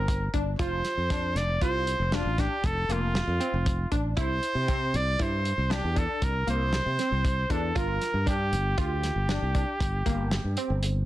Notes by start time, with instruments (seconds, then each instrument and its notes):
Already playing: fretless electric bass G1, synth arpeggio sound C4, trumpet A#4
0.08 kick, closed hi-hat
0.34 fretless electric bass G1, synth arpeggio sound D4, kick, closed hi-hat
0.59 fretless electric bass F1, synth arpeggio sound F4, trumpet C5, kick, closed hi-hat
0.85 snare, closed hi-hat
0.97 fretless electric bass F2
1.10 synth arpeggio sound D4, kick, snare, closed hi-hat
1.35 fretless electric bass F1, trumpet D5, snare, closed hi-hat
1.61 fretless electric bass C2, synth arpeggio sound F4, trumpet C5, kick, closed hi-hat
1.87 closed hi-hat
2.00 fretless electric bass F1
2.12 synth arpeggio sound D4, trumpet F4, snare, closed hi-hat
2.25 fretless electric bass A1
2.38 synth arpeggio sound D4, trumpet G4, kick, snare, closed hi-hat
2.64 fretless electric bass F1, trumpet A4, kick, closed hi-hat
2.89 fretless electric bass F1, synth arpeggio sound A#3, trumpet F4, closed hi-hat
3.15 snare, closed hi-hat
3.27 fretless electric bass F2
3.40 synth arpeggio sound C4, closed hi-hat
3.53 fretless electric bass F1
3.66 kick, closed hi-hat
3.92 fretless electric bass A1, synth arpeggio sound D4, kick, closed hi-hat
4.17 fretless electric bass C2, synth arpeggio sound E4, trumpet C5, kick, closed hi-hat
4.43 closed hi-hat
4.55 fretless electric bass C3
4.68 synth arpeggio sound C4, kick, closed hi-hat
4.94 fretless electric bass C2, trumpet D5, closed hi-hat
5.19 fretless electric bass G2, synth arpeggio sound E4, trumpet C5, kick, closed hi-hat
5.45 closed hi-hat
5.58 fretless electric bass C2
5.70 synth arpeggio sound D4, trumpet G4, snare, closed hi-hat
5.84 fretless electric bass E2
5.96 synth arpeggio sound D4, trumpet A4, kick, closed hi-hat
6.22 fretless electric bass C2, trumpet A#4, kick, closed hi-hat
6.47 fretless electric bass C2, synth arpeggio sound A#3, trumpet C5, closed hi-hat
6.73 snare, closed hi-hat
6.86 fretless electric bass C3
6.99 synth arpeggio sound C4, snare, closed hi-hat
7.12 fretless electric bass C2
7.25 kick, closed hi-hat
7.50 fretless electric bass E2, synth arpeggio sound D4, trumpet A4, kick, closed hi-hat
7.75 fretless electric bass G1, synth arpeggio sound F4, trumpet A#4, kick, closed hi-hat
8.01 snare, closed hi-hat
8.14 fretless electric bass G2
8.26 synth arpeggio sound D4, trumpet G4, kick, closed hi-hat
8.52 fretless electric bass G1, closed hi-hat
8.78 fretless electric bass D2, synth arpeggio sound F4, trumpet G4, kick, closed hi-hat
9.03 snare, closed hi-hat
9.16 fretless electric bass G1
9.29 synth arpeggio sound D4, snare, closed hi-hat
9.42 fretless electric bass C2
9.55 synth arpeggio sound D4, kick, closed hi-hat
9.80 fretless electric bass G1, kick, closed hi-hat
10.06 fretless electric bass G1, synth arpeggio sound A#3, kick, closed hi-hat
10.31 snare, closed hi-hat
10.44 fretless electric bass G2
10.57 synth arpeggio sound C4, closed hi-hat
10.70 fretless electric bass G1
10.83 closed hi-hat